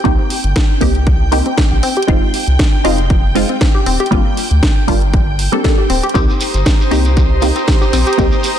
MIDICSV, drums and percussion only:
0, 0, Header, 1, 3, 480
1, 0, Start_track
1, 0, Key_signature, -3, "minor"
1, 0, Tempo, 508475
1, 48, Time_signature, 4, 2, 24, 8
1, 8108, End_track
2, 0, Start_track
2, 0, Title_t, "Shekere"
2, 5807, Note_on_c, 9, 82, 57
2, 5901, Note_off_c, 9, 82, 0
2, 5941, Note_on_c, 9, 82, 35
2, 6035, Note_off_c, 9, 82, 0
2, 6048, Note_on_c, 9, 82, 89
2, 6142, Note_off_c, 9, 82, 0
2, 6177, Note_on_c, 9, 82, 42
2, 6271, Note_off_c, 9, 82, 0
2, 6288, Note_on_c, 9, 82, 52
2, 6382, Note_off_c, 9, 82, 0
2, 6424, Note_on_c, 9, 82, 35
2, 6519, Note_off_c, 9, 82, 0
2, 6534, Note_on_c, 9, 82, 87
2, 6628, Note_off_c, 9, 82, 0
2, 6654, Note_on_c, 9, 82, 40
2, 6748, Note_off_c, 9, 82, 0
2, 6768, Note_on_c, 9, 82, 50
2, 6862, Note_off_c, 9, 82, 0
2, 7005, Note_on_c, 9, 82, 85
2, 7099, Note_off_c, 9, 82, 0
2, 7128, Note_on_c, 9, 82, 43
2, 7223, Note_off_c, 9, 82, 0
2, 7250, Note_on_c, 9, 82, 54
2, 7345, Note_off_c, 9, 82, 0
2, 7374, Note_on_c, 9, 82, 36
2, 7468, Note_off_c, 9, 82, 0
2, 7491, Note_on_c, 9, 82, 99
2, 7585, Note_off_c, 9, 82, 0
2, 7613, Note_on_c, 9, 82, 37
2, 7707, Note_off_c, 9, 82, 0
2, 7727, Note_on_c, 9, 82, 56
2, 7821, Note_off_c, 9, 82, 0
2, 7849, Note_on_c, 9, 82, 36
2, 7943, Note_off_c, 9, 82, 0
2, 7963, Note_on_c, 9, 82, 96
2, 8058, Note_off_c, 9, 82, 0
2, 8108, End_track
3, 0, Start_track
3, 0, Title_t, "Drums"
3, 47, Note_on_c, 9, 42, 65
3, 48, Note_on_c, 9, 36, 122
3, 142, Note_off_c, 9, 36, 0
3, 142, Note_off_c, 9, 42, 0
3, 287, Note_on_c, 9, 46, 106
3, 381, Note_off_c, 9, 46, 0
3, 416, Note_on_c, 9, 42, 53
3, 510, Note_off_c, 9, 42, 0
3, 527, Note_on_c, 9, 42, 66
3, 528, Note_on_c, 9, 36, 123
3, 530, Note_on_c, 9, 38, 122
3, 621, Note_off_c, 9, 42, 0
3, 622, Note_off_c, 9, 36, 0
3, 624, Note_off_c, 9, 38, 0
3, 767, Note_on_c, 9, 36, 62
3, 767, Note_on_c, 9, 46, 104
3, 861, Note_off_c, 9, 46, 0
3, 862, Note_off_c, 9, 36, 0
3, 896, Note_on_c, 9, 42, 54
3, 991, Note_off_c, 9, 42, 0
3, 1007, Note_on_c, 9, 42, 67
3, 1008, Note_on_c, 9, 36, 120
3, 1101, Note_off_c, 9, 42, 0
3, 1102, Note_off_c, 9, 36, 0
3, 1247, Note_on_c, 9, 46, 108
3, 1342, Note_off_c, 9, 46, 0
3, 1376, Note_on_c, 9, 42, 53
3, 1471, Note_off_c, 9, 42, 0
3, 1487, Note_on_c, 9, 42, 63
3, 1488, Note_on_c, 9, 36, 124
3, 1490, Note_on_c, 9, 38, 120
3, 1581, Note_off_c, 9, 42, 0
3, 1582, Note_off_c, 9, 36, 0
3, 1585, Note_off_c, 9, 38, 0
3, 1727, Note_on_c, 9, 46, 111
3, 1822, Note_off_c, 9, 46, 0
3, 1856, Note_on_c, 9, 42, 47
3, 1912, Note_off_c, 9, 42, 0
3, 1912, Note_on_c, 9, 42, 62
3, 1967, Note_off_c, 9, 42, 0
3, 1967, Note_on_c, 9, 42, 65
3, 1968, Note_on_c, 9, 36, 127
3, 2062, Note_off_c, 9, 36, 0
3, 2062, Note_off_c, 9, 42, 0
3, 2207, Note_on_c, 9, 46, 105
3, 2302, Note_off_c, 9, 46, 0
3, 2337, Note_on_c, 9, 42, 52
3, 2431, Note_off_c, 9, 42, 0
3, 2447, Note_on_c, 9, 42, 61
3, 2448, Note_on_c, 9, 36, 125
3, 2451, Note_on_c, 9, 38, 119
3, 2542, Note_off_c, 9, 36, 0
3, 2542, Note_off_c, 9, 42, 0
3, 2545, Note_off_c, 9, 38, 0
3, 2688, Note_on_c, 9, 37, 77
3, 2688, Note_on_c, 9, 46, 111
3, 2782, Note_off_c, 9, 37, 0
3, 2782, Note_off_c, 9, 46, 0
3, 2817, Note_on_c, 9, 42, 51
3, 2911, Note_off_c, 9, 42, 0
3, 2927, Note_on_c, 9, 42, 65
3, 2928, Note_on_c, 9, 36, 125
3, 3022, Note_off_c, 9, 36, 0
3, 3022, Note_off_c, 9, 42, 0
3, 3168, Note_on_c, 9, 46, 111
3, 3262, Note_off_c, 9, 46, 0
3, 3297, Note_on_c, 9, 42, 51
3, 3391, Note_off_c, 9, 42, 0
3, 3407, Note_on_c, 9, 42, 64
3, 3408, Note_on_c, 9, 36, 127
3, 3411, Note_on_c, 9, 38, 121
3, 3502, Note_off_c, 9, 36, 0
3, 3502, Note_off_c, 9, 42, 0
3, 3505, Note_off_c, 9, 38, 0
3, 3648, Note_on_c, 9, 46, 108
3, 3742, Note_off_c, 9, 46, 0
3, 3777, Note_on_c, 9, 42, 46
3, 3833, Note_off_c, 9, 42, 0
3, 3833, Note_on_c, 9, 42, 60
3, 3888, Note_off_c, 9, 42, 0
3, 3888, Note_on_c, 9, 36, 127
3, 3888, Note_on_c, 9, 42, 64
3, 3982, Note_off_c, 9, 36, 0
3, 3983, Note_off_c, 9, 42, 0
3, 4128, Note_on_c, 9, 46, 105
3, 4223, Note_off_c, 9, 46, 0
3, 4257, Note_on_c, 9, 42, 50
3, 4352, Note_off_c, 9, 42, 0
3, 4368, Note_on_c, 9, 36, 124
3, 4368, Note_on_c, 9, 42, 62
3, 4372, Note_on_c, 9, 38, 115
3, 4462, Note_off_c, 9, 36, 0
3, 4463, Note_off_c, 9, 42, 0
3, 4466, Note_off_c, 9, 38, 0
3, 4608, Note_on_c, 9, 36, 62
3, 4608, Note_on_c, 9, 46, 104
3, 4702, Note_off_c, 9, 36, 0
3, 4702, Note_off_c, 9, 46, 0
3, 4737, Note_on_c, 9, 42, 49
3, 4831, Note_off_c, 9, 42, 0
3, 4848, Note_on_c, 9, 36, 122
3, 4848, Note_on_c, 9, 42, 63
3, 4942, Note_off_c, 9, 36, 0
3, 4942, Note_off_c, 9, 42, 0
3, 5088, Note_on_c, 9, 46, 112
3, 5182, Note_off_c, 9, 46, 0
3, 5217, Note_on_c, 9, 42, 49
3, 5311, Note_off_c, 9, 42, 0
3, 5328, Note_on_c, 9, 36, 126
3, 5328, Note_on_c, 9, 42, 61
3, 5331, Note_on_c, 9, 38, 116
3, 5422, Note_off_c, 9, 36, 0
3, 5422, Note_off_c, 9, 42, 0
3, 5425, Note_off_c, 9, 38, 0
3, 5568, Note_on_c, 9, 46, 109
3, 5662, Note_off_c, 9, 46, 0
3, 5697, Note_on_c, 9, 42, 44
3, 5753, Note_off_c, 9, 42, 0
3, 5753, Note_on_c, 9, 42, 59
3, 5807, Note_off_c, 9, 42, 0
3, 5807, Note_on_c, 9, 42, 63
3, 5808, Note_on_c, 9, 36, 124
3, 5902, Note_off_c, 9, 36, 0
3, 5902, Note_off_c, 9, 42, 0
3, 6048, Note_on_c, 9, 46, 103
3, 6142, Note_off_c, 9, 46, 0
3, 6176, Note_on_c, 9, 42, 50
3, 6271, Note_off_c, 9, 42, 0
3, 6287, Note_on_c, 9, 42, 62
3, 6288, Note_on_c, 9, 36, 119
3, 6291, Note_on_c, 9, 38, 111
3, 6382, Note_off_c, 9, 36, 0
3, 6382, Note_off_c, 9, 42, 0
3, 6385, Note_off_c, 9, 38, 0
3, 6527, Note_on_c, 9, 37, 82
3, 6527, Note_on_c, 9, 46, 100
3, 6622, Note_off_c, 9, 37, 0
3, 6622, Note_off_c, 9, 46, 0
3, 6657, Note_on_c, 9, 42, 51
3, 6751, Note_off_c, 9, 42, 0
3, 6767, Note_on_c, 9, 42, 62
3, 6768, Note_on_c, 9, 36, 117
3, 6862, Note_off_c, 9, 36, 0
3, 6862, Note_off_c, 9, 42, 0
3, 7007, Note_on_c, 9, 46, 103
3, 7101, Note_off_c, 9, 46, 0
3, 7136, Note_on_c, 9, 42, 51
3, 7230, Note_off_c, 9, 42, 0
3, 7247, Note_on_c, 9, 42, 61
3, 7248, Note_on_c, 9, 36, 120
3, 7250, Note_on_c, 9, 38, 110
3, 7342, Note_off_c, 9, 36, 0
3, 7342, Note_off_c, 9, 42, 0
3, 7345, Note_off_c, 9, 38, 0
3, 7487, Note_on_c, 9, 46, 106
3, 7582, Note_off_c, 9, 46, 0
3, 7617, Note_on_c, 9, 42, 45
3, 7672, Note_off_c, 9, 42, 0
3, 7672, Note_on_c, 9, 42, 58
3, 7728, Note_off_c, 9, 42, 0
3, 7728, Note_on_c, 9, 36, 117
3, 7728, Note_on_c, 9, 42, 66
3, 7822, Note_off_c, 9, 36, 0
3, 7822, Note_off_c, 9, 42, 0
3, 7968, Note_on_c, 9, 46, 98
3, 8062, Note_off_c, 9, 46, 0
3, 8108, End_track
0, 0, End_of_file